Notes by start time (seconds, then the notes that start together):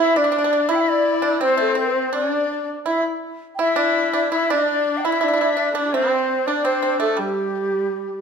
Already playing: E4
0.00 E4 E5
0.16 D4 D5
0.24 D4
0.32 D4
0.38 D4
0.44 D4
0.53 D4
0.69 E4 E5
0.76 G5
0.80 E5
0.89 D5
1.22 D4 D5
1.41 C4 C5
1.57 A3 A4
1.75 C4 C5
1.79 C5
2.13 D4 D5
2.86 E4 E5
3.55 E4 G5
3.60 E4 E5
3.76 D4 D5
4.13 D4 D5
4.32 E4 E5
4.50 D4 D5
4.97 G5
5.04 E4 E5
5.12 E4
5.21 D4 E4 D5
5.28 E4
5.34 E4
5.41 E4
5.57 D4 D5
5.72 D4 A4 D5
5.77 D4 D5
5.84 E4
5.88 G4 A4
5.93 C4 C5
6.46 D4 D5
6.65 C4 C5
6.82 C4 C5
7.00 A3 A4
7.11 A4
7.17 G3 G4
7.21 G4